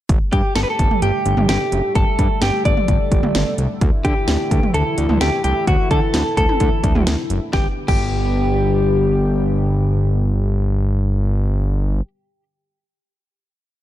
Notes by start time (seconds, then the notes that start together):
0.09 G1 D3 G3 A3 G4, kick, closed hi-hat
0.33 G2 G4, kick, closed hi-hat
0.56 G1 A4, snare, closed hi-hat
0.63 B4
0.70 A4
0.79 G1, kick, closed hi-hat
0.91 mid tom
1.02 G1 G4, closed hi-hat
1.26 G1, closed hi-hat
1.37 G1, mid tom
1.49 G1 G4, snare, closed hi-hat
1.72 F#1, closed hi-hat
1.95 G1 A4, kick, closed hi-hat
2.19 G2, kick, closed hi-hat
2.42 G1 G4, snare, closed hi-hat
2.65 G1 D5, kick, closed hi-hat
2.77 mid tom
2.88 G1, kick, closed hi-hat
3.12 G1, kick, closed hi-hat
3.23 G1, mid tom
3.35 G1, snare, closed hi-hat
3.58 C2, closed hi-hat
3.81 D2 E3 A3 E4, kick, closed hi-hat
4.05 D3 G4, kick, closed hi-hat
4.28 D2, snare, closed hi-hat
4.51 D2, kick, closed hi-hat
4.63 mid tom
4.74 D2 A4, closed hi-hat
4.98 D2, closed hi-hat
5.09 D2, mid tom
5.21 D2 G4, snare, closed hi-hat
5.44 C2 G4, closed hi-hat
5.67 D2 F#4, kick, closed hi-hat
5.91 D3 A4, kick, closed hi-hat
6.14 D2, snare, closed hi-hat
6.37 D2 A4, kick, closed hi-hat
6.49 mid tom
6.60 D2, kick, closed hi-hat
6.84 D2, kick, closed hi-hat
6.95 D2, mid tom
7.07 D2, snare, closed hi-hat
7.30 F#1, closed hi-hat
7.53 G1 D3 G3 B3 G4, kick, snare
7.88 G1 G4, kick, crash